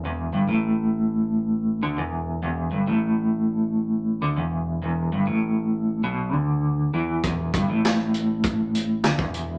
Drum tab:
HH |----------------|----------------|----------------|x-x-x-x-x-x-x-x-|
SD |----------------|----------------|----------------|----o-------o---|
BD |----------------|----------------|----------------|o-o-----o----o--|